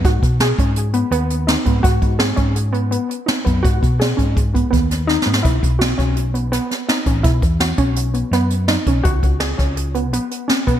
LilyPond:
<<
  \new Staff \with { instrumentName = "Synth arpeggio sound" } { \time 5/4 \key gis \minor \tempo 4 = 166 fis'4 gis'8 cis'4 b8 b4 dis'8 b8 | fis'4 gis'8 cis'4 b8 b4 dis'8 b8 | fis'4 gis'8 cis'4 b8 b4 dis'8 b8 | e'4 fis'8 cis'4 b8 b4 dis'8 cis'8 |
e'4 fis'8 cis'4 b8 b4 dis'8 cis'8 | fis'4 gis'8 cis'4 b8 b4 cis'8 b8 | }
  \new Staff \with { instrumentName = "Fingered electric bass" } { \clef bass \time 5/4 \key gis \minor gis,8 b,4 gis,4. dis,4. gis,8 | gis,8 gis,4 gis,2 r4 fis,8 | gis,8 b,4 gis,4. dis,4. gis,8 | b,,8 b,,4 b,,2 r4 a,,8 |
b,8 e,4 b,,4. fis,4. b,,8 | cis,8 cis,4 cis,2 r4 b,,8 | }
  \new DrumStaff \with { instrumentName = "Drums" } \drummode { \time 5/4 <hh bd>8 <hh bd>8 <hh sn>8 <hh bd>8 hh8 hh8 hh8 hh8 <hh sn>8 <hh bd>8 | <hh bd>8 <hh bd>8 <hh sn>8 <hh bd>8 hh8 hh8 hh8 hh8 <hh sn>8 <hh bd>8 | <hh bd>8 <hh bd>8 <hh sn>8 <hh bd>8 <hh bd>8 <hh bd>8 <hh bd>8 <hh sn>8 \tuplet 3/2 { sn8 sn8 sn8 } | <hh bd>8 <hh bd>8 <hh sn>8 <hh bd sn>8 hh8 hh8 <hh sn>8 <hh sn>8 <hh sn>8 <hh bd>8 |
<hh bd>8 <hh bd>8 <hh sn>8 <hh bd>8 hh8 hh8 <hh sn>8 hh8 <hh sn>8 <hh bd>8 | <hh bd>8 <hh bd>8 <hh sn>8 <hh bd sn>8 hh8 hh8 hh8 hh8 <hh sn>8 <hh bd>8 | }
>>